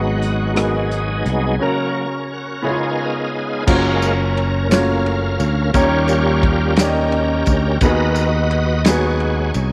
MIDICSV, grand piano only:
0, 0, Header, 1, 2, 480
1, 0, Start_track
1, 0, Key_signature, 6, "major"
1, 0, Tempo, 691244
1, 1112, Time_signature, 6, 3, 24, 8
1, 6752, End_track
2, 0, Start_track
2, 0, Title_t, "Grand piano"
2, 0, Program_c, 0, 0
2, 0, Control_c, 0, 64, 127
2, 0, Note_on_c, 0, 44, 52
2, 0, Note_on_c, 0, 56, 55
2, 0, Note_on_c, 0, 59, 51
2, 0, Note_on_c, 0, 63, 50
2, 0, Note_on_c, 0, 66, 53
2, 0, Note_on_c, 0, 71, 64
2, 260, Note_off_c, 0, 56, 0
2, 263, Note_off_c, 0, 59, 0
2, 265, Note_off_c, 0, 63, 0
2, 269, Note_off_c, 0, 66, 0
2, 295, Note_off_c, 0, 71, 0
2, 358, Note_off_c, 0, 44, 0
2, 373, Note_on_c, 0, 56, 52
2, 381, Note_on_c, 0, 59, 45
2, 385, Note_on_c, 0, 63, 48
2, 388, Note_on_c, 0, 66, 49
2, 397, Note_on_c, 0, 70, 56
2, 981, Note_off_c, 0, 56, 0
2, 985, Note_off_c, 0, 59, 0
2, 987, Note_off_c, 0, 63, 0
2, 988, Note_off_c, 0, 66, 0
2, 993, Note_off_c, 0, 70, 0
2, 1105, Note_on_c, 0, 61, 59
2, 1109, Note_on_c, 0, 49, 49
2, 1115, Note_on_c, 0, 66, 50
2, 1120, Control_c, 0, 64, 0
2, 1128, Note_on_c, 0, 70, 69
2, 1254, Control_c, 0, 64, 127
2, 1707, Note_off_c, 0, 61, 0
2, 1712, Note_off_c, 0, 66, 0
2, 1719, Note_off_c, 0, 70, 0
2, 1802, Note_off_c, 0, 49, 0
2, 1822, Note_on_c, 0, 59, 59
2, 1824, Note_on_c, 0, 61, 48
2, 1829, Note_on_c, 0, 49, 55
2, 1831, Note_on_c, 0, 64, 47
2, 1836, Note_on_c, 0, 68, 58
2, 1840, Note_on_c, 0, 73, 63
2, 1841, Control_c, 0, 64, 0
2, 1873, Note_on_c, 0, 65, 51
2, 1876, Note_off_c, 0, 64, 0
2, 1969, Control_c, 0, 64, 127
2, 2425, Note_off_c, 0, 59, 0
2, 2427, Note_off_c, 0, 61, 0
2, 2432, Note_off_c, 0, 68, 0
2, 2434, Note_off_c, 0, 73, 0
2, 2451, Note_off_c, 0, 65, 0
2, 2522, Note_off_c, 0, 49, 0
2, 2545, Note_on_c, 0, 58, 62
2, 2547, Note_on_c, 0, 61, 65
2, 2556, Note_on_c, 0, 65, 63
2, 2559, Note_on_c, 0, 66, 69
2, 2560, Control_c, 0, 64, 0
2, 2566, Note_on_c, 0, 72, 54
2, 2604, Note_off_c, 0, 72, 0
2, 2609, Note_on_c, 0, 73, 66
2, 2678, Control_c, 0, 64, 127
2, 3147, Note_off_c, 0, 58, 0
2, 3148, Note_off_c, 0, 61, 0
2, 3152, Note_off_c, 0, 65, 0
2, 3154, Note_off_c, 0, 66, 0
2, 3179, Note_off_c, 0, 73, 0
2, 3259, Note_on_c, 0, 57, 49
2, 3263, Note_on_c, 0, 61, 55
2, 3268, Note_on_c, 0, 65, 55
2, 3278, Note_on_c, 0, 66, 56
2, 3281, Note_on_c, 0, 73, 63
2, 3302, Note_on_c, 0, 58, 60
2, 3310, Note_off_c, 0, 57, 0
2, 3866, Note_off_c, 0, 61, 0
2, 3868, Note_off_c, 0, 65, 0
2, 3873, Note_off_c, 0, 66, 0
2, 3874, Note_off_c, 0, 73, 0
2, 3885, Note_off_c, 0, 58, 0
2, 3985, Note_on_c, 0, 58, 71
2, 3987, Note_on_c, 0, 61, 65
2, 3995, Note_on_c, 0, 51, 56
2, 3996, Note_on_c, 0, 63, 65
2, 3999, Control_c, 0, 64, 0
2, 4001, Note_on_c, 0, 67, 61
2, 4004, Note_on_c, 0, 73, 71
2, 4124, Control_c, 0, 64, 127
2, 4586, Note_off_c, 0, 58, 0
2, 4587, Note_off_c, 0, 61, 0
2, 4591, Note_off_c, 0, 63, 0
2, 4594, Note_off_c, 0, 67, 0
2, 4595, Note_off_c, 0, 73, 0
2, 4684, Note_off_c, 0, 51, 0
2, 4705, Note_on_c, 0, 58, 58
2, 4712, Note_on_c, 0, 61, 59
2, 4718, Note_on_c, 0, 63, 49
2, 4723, Note_on_c, 0, 67, 59
2, 4725, Note_on_c, 0, 74, 56
2, 4763, Note_off_c, 0, 74, 0
2, 4771, Note_on_c, 0, 75, 68
2, 5306, Note_off_c, 0, 58, 0
2, 5309, Note_off_c, 0, 61, 0
2, 5312, Note_off_c, 0, 63, 0
2, 5315, Note_off_c, 0, 67, 0
2, 5338, Note_off_c, 0, 75, 0
2, 5431, Note_on_c, 0, 59, 69
2, 5437, Note_on_c, 0, 63, 63
2, 5438, Control_c, 0, 64, 0
2, 5440, Note_on_c, 0, 51, 54
2, 5442, Note_on_c, 0, 66, 64
2, 5446, Note_on_c, 0, 68, 65
2, 5454, Note_on_c, 0, 75, 72
2, 5551, Control_c, 0, 64, 127
2, 6029, Note_off_c, 0, 59, 0
2, 6031, Note_off_c, 0, 63, 0
2, 6034, Note_off_c, 0, 66, 0
2, 6036, Note_off_c, 0, 68, 0
2, 6040, Note_off_c, 0, 75, 0
2, 6126, Note_off_c, 0, 51, 0
2, 6148, Note_on_c, 0, 59, 67
2, 6156, Note_on_c, 0, 63, 63
2, 6160, Note_on_c, 0, 66, 64
2, 6171, Note_on_c, 0, 68, 63
2, 6177, Note_on_c, 0, 71, 71
2, 6747, Note_off_c, 0, 59, 0
2, 6751, Note_off_c, 0, 63, 0
2, 6752, Note_off_c, 0, 66, 0
2, 6752, Note_off_c, 0, 68, 0
2, 6752, Note_off_c, 0, 71, 0
2, 6752, End_track
0, 0, End_of_file